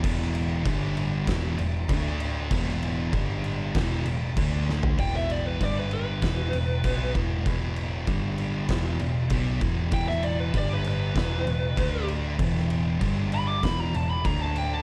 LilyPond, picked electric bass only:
\new Staff \with { instrumentName = "Picked electric bass" } { \clef bass \time 4/4 \key e \minor \tempo 4 = 97 e,,4 g,,4 e,,8 e,,8 d,4 | e,,4 g,,4 e,,8 e,,8 d,4 | e,,4 g,,4 e,,8 e,,8 b,,8 e,,8 | e,,4 g,,4 e,,8 e,,8 b,,8 e,,8 |
e,,4 g,,4 e,,8 e,,8 d,4 | e,,4 g,,4 e,,8 e,,8 d,4 | }